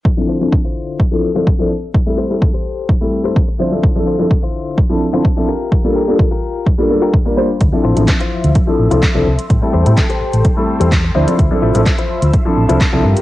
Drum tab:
HH |----------------|----------------|----------------|----------------|
CP |----------------|----------------|----------------|----------------|
BD |o---o---o---o---|o---o---o---o---|o---o---o---o---|o---o---o---o---|

HH |x--xxx-xx--xx--x|x--xxx-xx--xx--x|x--xxx-xx--xx--x|
CP |----x-------x---|----x-------x---|----x-------x---|
BD |o---o---o---o---|o---o---o---o---|o---o---o---o---|